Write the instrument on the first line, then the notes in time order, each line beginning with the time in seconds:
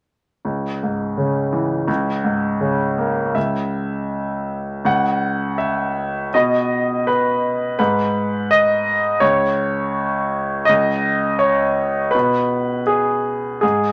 grand piano
0.45 C#2
0.83 G#2
1.17 C#3
1.53 E3
1.88 C#2
2.24 G#2
2.61 C#3
2.98 A#3
3.35 C#2 E5
4.85 C#2 F#5
5.58 E5
6.34 B2 D#5
7.07 B4
7.79 G#2 B4
8.51 D#5
9.20 C#2 C#5
10.65 C#2 D#5
11.39 C#5
12.11 B2 B4
12.87 G#4
13.61 G#2 G#4